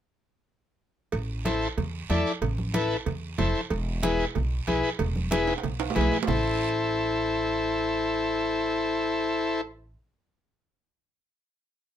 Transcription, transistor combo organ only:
1.45 1.68 E4 medium
1.45 1.68 A4 medium
1.45 1.68 C5 medium
2.10 2.32 E4 medium
2.10 2.32 A4 medium
2.10 2.33 D5 medium
2.74 2.97 E4 medium
2.74 2.97 A4 medium
2.74 2.97 B4 medium
3.38 3.61 E4 medium
3.38 3.61 A4 medium
3.38 3.61 C5 medium
4.03 4.25 E4 medium
4.03 4.25 G#4 medium
4.03 4.26 B4 medium
4.67 4.90 E4 medium
4.67 4.90 G#4 medium
4.67 4.90 B4 medium
5.31 5.54 E4 medium
5.31 5.54 G#4 medium
5.31 5.54 B4 loud
5.95 6.18 E4 medium
5.95 6.18 G#4 medium
5.95 6.18 B4 medium
6.28 9.61 E4 medium
6.28 9.61 A4 medium
6.28 9.61 C5 medium

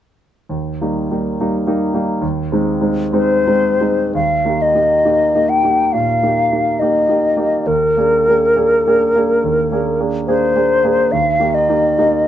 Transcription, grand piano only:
0.49 0.79 D#2 soft
0.81 1.08 G3 soft
0.81 1.08 A#3 soft
0.81 1.08 D#4 soft
1.10 1.36 G3 soft
1.10 1.36 A#3 soft
1.10 1.37 D#4 soft
1.40 1.65 G3 soft
1.40 1.65 A#3 soft
1.40 1.65 D#4 soft
1.66 1.91 G3 soft
1.66 1.91 A#3 soft
1.66 1.92 D#4 soft
1.93 2.19 G3 soft
1.93 2.19 A#3 soft
1.93 2.19 D#4 soft
2.22 2.50 D#2 soft
2.52 2.79 G#3 soft
2.52 2.79 C4 soft
2.52 2.80 D#4 soft
2.81 3.10 G#3 soft
2.81 3.10 C4 soft
2.81 3.11 D#4 soft
3.13 3.43 G#3 soft
3.13 3.44 C4 soft
3.13 3.44 D#4 soft
3.47 3.79 G#3 soft
3.47 3.79 C4 soft
3.47 3.79 D#4 soft
3.80 4.11 G#3 soft
3.80 4.11 C4 soft
3.80 4.11 D#4 soft
4.14 4.45 D#2 soft
4.45 4.73 A#3 soft
4.45 4.73 D#4 soft
4.45 4.73 G4 soft
4.75 5.02 A#3 soft
4.75 5.02 D#4 soft
4.75 5.02 G4 soft
5.05 5.32 A#3 soft
5.05 5.32 D#4 soft
5.05 5.32 G4 soft
5.35 5.61 A#3 soft
5.35 5.61 D#4 soft
5.35 5.62 G4 soft
5.63 5.90 A#3 soft
5.63 5.91 D#4 soft
5.63 5.91 G4 soft
5.94 6.22 A#2 soft
6.23 6.49 A#3 soft
6.23 6.49 D#4 soft
6.23 6.49 G4 soft
6.52 6.77 A#3 soft
6.52 6.78 D#4 soft
6.52 6.78 G4 soft
6.81 7.06 A#3 soft
6.81 7.06 D#4 soft
6.81 7.07 G4 soft
7.09 7.35 A#3 soft
7.09 7.35 D#4 soft
7.09 7.35 G4 soft
7.37 7.63 A#3 soft
7.37 7.64 D#4 soft
7.37 7.64 G4 soft
7.67 7.96 D#2 soft
7.97 8.23 A#3 soft
7.97 8.24 D4 soft
7.97 8.24 G#4 soft
8.28 8.54 A#3 soft
8.28 8.54 D4 soft
8.28 8.54 G#4 soft
8.56 8.82 A#3 soft
8.56 8.83 D4 soft
8.56 8.82 G#4 soft
8.87 9.12 A#3 soft
8.87 9.13 D4 soft
8.87 9.13 G#4 soft
9.15 9.41 A#3 soft
9.15 9.41 D4 soft
9.15 9.41 G#4 soft
9.44 9.71 D#2 soft
9.72 9.97 A#3 soft
9.72 9.97 D4 soft
9.72 9.97 G#4 soft
10.00 10.25 A#3 soft
10.00 10.25 D4 soft
10.00 10.25 G#4 soft
10.28 10.53 A#3 soft
10.28 10.53 D4 soft
10.28 10.53 G#4 soft
10.55 10.81 A#3 soft
10.55 10.80 D4 soft
10.55 10.81 G#4 soft
10.84 11.09 A#3 soft
10.84 11.09 D4 soft
10.84 11.09 G#4 soft
11.13 11.40 D#2 soft
11.39 11.66 A#3 soft
11.39 11.66 D#4 soft
11.39 11.66 G4 soft
11.69 11.95 A#3 soft
11.69 11.95 D#4 soft
11.69 11.96 G4 soft
11.98 12.24 A#3 soft
11.98 12.24 D#4 soft
11.98 12.24 G4 soft

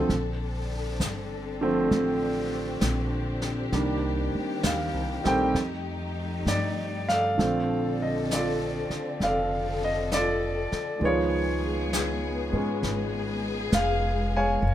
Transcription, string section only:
0.00 1.88 A4 medium
0.11 3.70 D3 medium
0.11 5.52 C4 medium
0.11 5.52 D4 medium
1.91 7.35 G4 medium
3.70 5.52 D#3 medium
5.55 7.38 F3 medium
5.55 7.37 A3 medium
5.55 7.38 D#4 medium
7.38 10.98 D3 medium
7.38 10.99 C4 medium
7.38 9.18 A4 medium
9.19 10.99 A4 medium
11.01 14.74 G#3 medium
11.01 14.59 B3 medium
11.01 12.81 G#4 medium
12.83 14.61 G#4 medium
14.62 14.74 A#3 medium
14.62 14.74 A#4 medium

